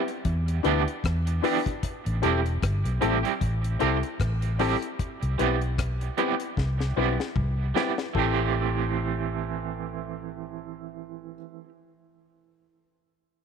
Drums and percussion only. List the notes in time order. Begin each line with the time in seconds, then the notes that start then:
0.08 closed hi-hat
0.25 kick, closed hi-hat
0.48 closed hi-hat
0.65 closed hi-hat
0.88 closed hi-hat
1.04 kick, cross-stick, closed hi-hat
1.27 closed hi-hat
1.44 open hi-hat
1.66 kick, closed hi-hat
1.83 kick, closed hi-hat
2.06 closed hi-hat
2.23 closed hi-hat
2.46 closed hi-hat
2.63 kick, cross-stick, closed hi-hat
2.85 closed hi-hat
3.02 closed hi-hat
3.25 closed hi-hat
3.41 kick, closed hi-hat
3.64 closed hi-hat
3.80 closed hi-hat
4.03 closed hi-hat
4.20 kick, cross-stick, closed hi-hat
4.42 closed hi-hat
4.59 open hi-hat
4.82 closed hi-hat
4.99 kick, closed hi-hat
5.23 closed hi-hat
5.39 closed hi-hat
5.62 closed hi-hat
5.78 kick, cross-stick, closed hi-hat
6.01 closed hi-hat
6.18 closed hi-hat
6.40 closed hi-hat
6.57 kick, snare
6.80 snare
7.20 snare
7.36 kick, mid tom
7.76 snare
7.98 snare
8.15 kick